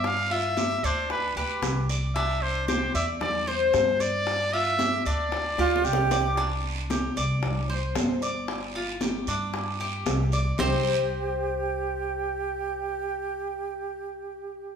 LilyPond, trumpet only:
\new Staff \with { instrumentName = "Trumpet" } { \time 4/4 \key c \major \tempo 4 = 114 f''8 e''4 c''8 b'8 b'4 r8 | e''8 c''8 c''8 e''8 d''8 c''4 d''8~ | d''8 e''4 d''2 r8 | r1 |
r1 | r1 | r1 | }